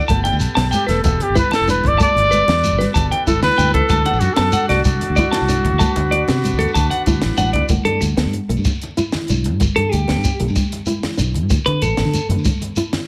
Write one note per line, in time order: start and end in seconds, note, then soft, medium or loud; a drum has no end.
0.00 3.87 A4 medium
0.08 0.29 G1 loud
0.08 0.33 A3 medium
0.08 3.87 B3 medium
0.08 1.98 G4 medium
0.08 0.20 A5 medium
0.08 kick medium
0.08 closed hi-hat medium
0.08 high conga loud
0.08 low conga soft
0.08 shekere medium
0.18 low conga soft
0.24 0.35 G5 medium
0.24 closed hi-hat soft
0.24 low conga medium
0.32 0.39 D2 medium
0.32 shekere soft
0.39 0.47 B1 medium
0.39 closed hi-hat medium
0.39 shekere medium
0.49 low conga soft
0.55 0.69 B1 medium
0.55 0.80 B3 medium
0.55 0.67 A5 loud
0.55 snare medium
0.55 closed hi-hat medium
0.55 low conga medium
0.71 0.88 G4 medium
0.71 0.83 G5 medium
0.71 closed hi-hat soft
0.71 high conga medium
0.71 shekere medium
0.81 low conga soft
0.87 1.01 E1 medium
0.87 1.11 A3 medium
0.87 1.03 A4 medium
0.87 0.98 B4 medium
0.87 snare soft
0.87 closed hi-hat medium
0.87 low conga medium
1.04 1.18 E1 loud
1.04 1.24 A4 medium
1.04 kick medium
1.04 closed hi-hat medium
1.04 high conga medium
1.04 low conga soft
1.04 shekere medium
1.20 1.37 G4 medium
1.20 closed hi-hat medium
1.20 low conga medium
1.30 1.42 G1 medium
1.35 1.59 E4 medium
1.35 1.47 B4 medium
1.35 1.52 B4 medium
1.35 kick medium
1.35 closed hi-hat soft
1.35 high conga medium
1.35 low conga soft
1.35 shekere medium
1.44 low conga soft
1.51 1.68 A4 loud
1.51 1.63 A5 medium
1.51 snare medium
1.51 closed hi-hat medium
1.51 low conga medium
1.51 shekere soft
1.61 1.80 E1 medium
1.68 1.91 D4 medium
1.68 1.89 B4 medium
1.68 closed hi-hat medium
1.68 high conga medium
1.68 low conga soft
1.68 shekere loud
1.84 1.91 G1 medium
1.84 2.01 D5 medium
1.84 kick medium
1.84 closed hi-hat medium
1.84 low conga medium
1.93 2.05 G1 medium
1.93 low conga soft
1.98 2.23 A3 medium
1.98 7.67 F#4 medium
1.98 2.10 A5 medium
1.98 kick loud
1.98 closed hi-hat medium
1.98 high conga medium
1.98 low conga soft
1.98 shekere loud
2.03 2.92 D5 loud
2.09 low conga soft
2.16 2.42 G1 medium
2.16 closed hi-hat medium
2.16 low conga medium
2.24 shekere soft
2.31 2.42 B4 medium
2.31 closed hi-hat medium
2.31 high conga medium
2.31 shekere loud
2.41 low conga soft
2.48 2.74 E2 medium
2.48 muted nylon-string guitar stroke medium
2.48 snare medium
2.48 closed hi-hat medium
2.48 low conga loud
2.64 closed hi-hat medium
2.64 high conga medium
2.64 shekere medium
2.72 2.85 G1 medium
2.72 low conga soft
2.79 3.03 G3 medium
2.79 2.90 B4 medium
2.79 snare soft
2.79 closed hi-hat medium
2.79 low conga medium
2.94 3.08 G1 loud
2.94 3.06 A5 medium
2.94 kick medium
2.94 closed hi-hat medium
2.94 high conga medium
2.94 low conga soft
2.94 shekere medium
3.11 3.22 G5 medium
3.11 closed hi-hat medium
3.11 low conga medium
3.27 3.40 G1 medium
3.27 3.50 E4 medium
3.27 3.42 A4 medium
3.27 kick medium
3.27 closed hi-hat soft
3.27 high conga medium
3.27 low conga soft
3.27 shekere medium
3.36 low conga soft
3.43 3.49 D2 medium
3.43 3.72 B4 loud
3.43 snare medium
3.43 closed hi-hat medium
3.43 low conga loud
3.43 shekere soft
3.58 3.71 D2 loud
3.58 3.81 D4 medium
3.58 3.69 G5 medium
3.58 closed hi-hat soft
3.58 high conga medium
3.58 low conga soft
3.58 shekere loud
3.74 3.81 C#2 medium
3.74 4.21 A4 medium
3.74 3.86 B4 medium
3.74 kick medium
3.74 closed hi-hat soft
3.74 low conga medium
3.83 low conga soft
3.89 4.10 D2 loud
3.89 4.12 A3 medium
3.89 7.67 D4 medium
3.89 5.79 A4 medium
3.89 4.01 A5 medium
3.89 kick loud
3.89 closed hi-hat medium
3.89 high conga medium
3.89 low conga soft
3.89 shekere medium
3.98 low conga soft
4.06 4.17 F#5 medium
4.06 closed hi-hat soft
4.06 low conga loud
4.13 4.20 A1 medium
4.13 shekere soft
4.20 4.28 F#2 medium
4.20 4.35 F#4 medium
4.20 closed hi-hat medium
4.20 high conga medium
4.20 shekere medium
4.29 4.67 A4 loud
4.29 low conga soft
4.37 4.51 F#2 medium
4.37 4.61 B3 medium
4.37 4.49 A5 loud
4.37 snare medium
4.37 closed hi-hat medium
4.37 low conga medium
4.52 4.64 F#5 medium
4.52 closed hi-hat medium
4.52 high conga medium
4.52 shekere loud
4.61 low conga soft
4.68 4.82 C2 medium
4.68 4.93 A3 medium
4.68 4.83 F#4 medium
4.68 4.80 D5 medium
4.68 snare soft
4.68 closed hi-hat medium
4.68 low conga loud
4.84 4.98 C2 loud
4.84 7.35 F#4 medium
4.84 kick medium
4.84 closed hi-hat medium
4.84 high conga medium
4.84 low conga soft
4.84 shekere medium
5.01 closed hi-hat medium
5.01 low conga medium
5.10 5.22 D2 medium
5.16 5.41 E4 medium
5.16 5.28 D5 medium
5.16 kick medium
5.16 closed hi-hat medium
5.16 high conga medium
5.16 low conga soft
5.16 shekere medium
5.26 low conga soft
5.31 5.43 A5 loud
5.31 snare medium
5.31 closed hi-hat medium
5.31 low conga loud
5.31 shekere soft
5.41 5.60 C2 medium
5.48 5.71 D4 medium
5.48 closed hi-hat medium
5.48 high conga medium
5.48 low conga soft
5.48 shekere medium
5.65 5.71 D2 medium
5.65 kick medium
5.65 closed hi-hat soft
5.65 low conga loud
5.73 5.85 D2 medium
5.73 low conga soft
5.79 6.03 A3 medium
5.79 7.70 B4 medium
5.79 5.91 A5 medium
5.79 kick loud
5.79 closed hi-hat medium
5.79 high conga loud
5.79 low conga soft
5.79 shekere medium
5.89 low conga soft
5.96 6.22 D2 medium
5.96 closed hi-hat soft
5.96 low conga loud
5.96 shekere soft
6.11 6.23 D5 medium
6.11 closed hi-hat medium
6.11 high conga medium
6.11 low conga soft
6.28 6.54 C3 medium
6.28 6.51 B3 medium
6.28 snare medium
6.28 closed hi-hat medium
6.28 low conga medium
6.36 low conga soft
6.36 shekere soft
6.44 closed hi-hat medium
6.44 high conga medium
6.44 low conga soft
6.44 shekere medium
6.53 6.65 D2 medium
6.53 shekere soft
6.59 6.82 A3 medium
6.59 6.70 A4 medium
6.59 closed hi-hat soft
6.59 low conga medium
6.68 shekere soft
6.74 6.89 D2 loud
6.74 6.86 A5 medium
6.74 kick medium
6.74 closed hi-hat medium
6.74 high conga medium
6.74 shekere medium
6.90 7.02 F#5 medium
6.90 closed hi-hat soft
6.90 low conga medium
7.00 low conga soft
7.06 7.20 D2 medium
7.06 7.30 E4 medium
7.06 kick medium
7.06 closed hi-hat soft
7.06 high conga medium
7.06 shekere medium
7.14 shekere soft
7.22 7.30 A1 medium
7.22 snare medium
7.22 closed hi-hat medium
7.22 low conga loud
7.22 shekere soft
7.37 7.52 A1 medium
7.37 7.61 D4 medium
7.37 7.49 F#5 medium
7.37 closed hi-hat medium
7.37 high conga medium
7.37 low conga soft
7.37 shekere medium
7.53 7.61 D2 medium
7.53 7.65 D5 medium
7.53 kick medium
7.53 closed hi-hat medium
7.53 low conga medium
7.69 7.77 G1 medium
7.69 7.93 A3 medium
7.69 kick medium
7.69 closed hi-hat medium
7.69 high conga medium
7.69 shekere medium
7.85 7.98 G2 medium
7.85 8.01 A4 medium
7.85 closed hi-hat soft
7.85 low conga medium
8.01 8.15 D2 medium
8.01 muted clean electric guitar stroke medium
8.01 closed hi-hat medium
8.01 high conga medium
8.01 shekere medium
8.17 8.24 D2 loud
8.17 8.40 B3 medium
8.17 snare medium
8.17 closed hi-hat medium
8.17 low conga medium
8.25 8.39 G2 medium
8.33 closed hi-hat soft
8.33 high conga medium
8.33 low conga soft
8.49 8.56 B1 medium
8.49 8.72 A3 medium
8.49 closed hi-hat soft
8.49 low conga medium
8.57 8.71 G2 medium
8.57 shekere soft
8.64 kick medium
8.64 closed hi-hat medium
8.64 high conga medium
8.64 shekere medium
8.74 low conga soft
8.74 shekere soft
8.81 closed hi-hat soft
8.81 low conga medium
8.81 shekere soft
8.91 low conga soft
8.97 9.20 E4 medium
8.97 closed hi-hat soft
8.97 high conga medium
8.97 low conga soft
8.97 shekere medium
9.12 snare medium
9.12 closed hi-hat medium
9.12 low conga medium
9.22 low conga soft
9.28 9.53 B1 loud
9.28 9.52 D4 medium
9.28 closed hi-hat soft
9.28 high conga medium
9.28 low conga soft
9.28 shekere medium
9.44 closed hi-hat soft
9.44 low conga medium
9.53 9.60 G2 medium
9.53 low conga soft
9.60 9.68 G1 medium
9.60 muted nylon-string guitar stroke medium
9.60 kick medium
9.60 closed hi-hat medium
9.60 high conga medium
9.60 shekere medium
9.76 9.90 G2 medium
9.76 9.92 A4 loud
9.76 closed hi-hat medium
9.76 low conga medium
9.92 10.06 D2 loud
9.92 10.40 G4 medium
9.92 closed hi-hat medium
9.92 high conga medium
9.92 shekere medium
10.08 10.16 D2 medium
10.08 10.31 B3 medium
10.08 snare medium
10.08 closed hi-hat medium
10.08 low conga medium
10.17 10.30 G2 medium
10.24 kick medium
10.24 closed hi-hat soft
10.24 high conga medium
10.24 low conga soft
10.24 shekere loud
10.40 10.47 B1 medium
10.40 10.63 A3 medium
10.40 closed hi-hat medium
10.40 low conga medium
10.48 10.62 G2 medium
10.48 shekere soft
10.55 kick medium
10.55 closed hi-hat medium
10.55 high conga medium
10.55 shekere medium
10.64 low conga soft
10.64 shekere soft
10.71 closed hi-hat soft
10.71 low conga medium
10.71 shekere soft
10.80 low conga soft
10.86 11.10 E4 medium
10.86 closed hi-hat soft
10.86 high conga medium
10.86 low conga soft
10.86 shekere medium
11.03 snare medium
11.03 closed hi-hat medium
11.03 low conga medium
11.11 low conga soft
11.17 11.43 B1 loud
11.17 11.41 D4 medium
11.17 closed hi-hat soft
11.17 high conga medium
11.17 low conga soft
11.17 shekere medium
11.34 closed hi-hat soft
11.34 low conga medium
11.43 11.49 G2 medium
11.43 low conga soft
11.50 11.57 D2 loud
11.50 muted nylon-string guitar stroke medium
11.50 kick medium
11.50 closed hi-hat medium
11.50 high conga medium
11.50 shekere medium
11.66 11.80 D3 medium
11.66 11.82 B4 loud
11.66 closed hi-hat soft
11.66 low conga medium
11.82 11.95 A1 medium
11.82 12.27 A4 medium
11.82 closed hi-hat medium
11.82 high conga medium
11.82 shekere medium
11.97 12.04 A1 medium
11.97 12.21 B3 medium
11.97 snare medium
11.97 closed hi-hat medium
11.97 low conga medium
12.05 12.19 D3 medium
12.14 closed hi-hat soft
12.14 high conga medium
12.14 low conga soft
12.14 shekere loud
12.29 12.36 F#2 loud
12.29 12.54 A3 medium
12.29 closed hi-hat soft
12.29 low conga medium
12.36 12.50 D3 medium
12.36 shekere soft
12.45 kick medium
12.45 closed hi-hat medium
12.45 high conga loud
12.45 shekere loud
12.53 low conga soft
12.53 shekere soft
12.60 closed hi-hat medium
12.60 low conga medium
12.60 shekere soft
12.70 low conga soft
12.76 13.01 E4 medium
12.76 closed hi-hat medium
12.76 high conga medium
12.76 low conga soft
12.76 shekere medium
12.93 snare medium
12.93 closed hi-hat medium
12.93 low conga medium
13.01 low conga soft